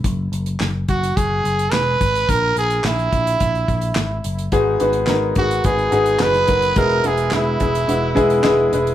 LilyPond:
<<
  \new Staff \with { instrumentName = "Trumpet" } { \time 4/4 \key fis \mixolydian \tempo 4 = 107 r4. fis'8 gis'4 b'4 | ais'8 gis'8 e'2~ e'8 r8 | r4. fis'8 gis'4 b'4 | ais'8 gis'8 e'2~ e'8 r8 | }
  \new Staff \with { instrumentName = "Upright piano" } { \time 4/4 \key fis \mixolydian r1 | r1 | <b dis' fis' gis'>8 <b dis' fis' b'>8 <b dis' fis' ais'>8 <b dis' fis' gis'>8 <b dis' fis' b'>8 <b dis' fis' gis'>8 <b dis' fis' b'>8 <b dis' fis' ais'>8 | <gis b e' gis'>8 <gis b e' fis'>8 <gis b e' gis'>8 <gis b e' gis'>8 <gis b e' fis'>8 <gis b e' gis'>8 <gis b e' gis'>8 <gis b e' b'>8 | }
  \new Staff \with { instrumentName = "Upright piano" } { \clef bass \time 4/4 \key fis \mixolydian r1 | r1 | <gis, dis>4. r2 r8 | b,4. r2 r8 | }
  \new Staff \with { instrumentName = "Picked electric bass" } { \clef bass \time 4/4 \key fis \mixolydian fis,,8 fis,,8 fis,,8 fis,,8 fis,,8 fis,,8 e,,8 gis,,8 | ais,,8 ais,,8 ais,,8 ais,,8 ais,,8 ais,,8 gis,,8 fis,,8 | gis,,8 gis,,8 gis,,8 gis,,8 gis,,8 gis,,8 fis,,8 fis,,8 | e,,8 e,,8 e,,8 e,,8 e,,8 e,,8 e,,8 e,,8 | }
  \new DrumStaff \with { instrumentName = "Drums" } \drummode { \time 4/4 <hh bd>8 hh16 hh16 <hc sn>8 <hh bd>16 hh16 <hh bd>8 hh16 hh16 <hc sn>8 <hh bd>16 hh16 | <hh bd>8 hh16 hh16 <hc sn>16 hh16 <hh bd>16 hh16 <hh bd>16 hh16 <hh bd>16 hh16 <hc sn>8 hh16 hh16 | <hh bd>8 hh16 hh16 <hc sn>8 <hh bd>16 hh16 <hh bd>16 hh16 hh16 hh16 <hc sn>16 <hh sn>16 <hh bd>16 hh16 | <hh bd>16 hh16 hh16 hh16 <hc sn>8 <hh bd>16 hh16 hh8 <hh bd>16 hh16 <hc sn>8 hh16 hh16 | }
>>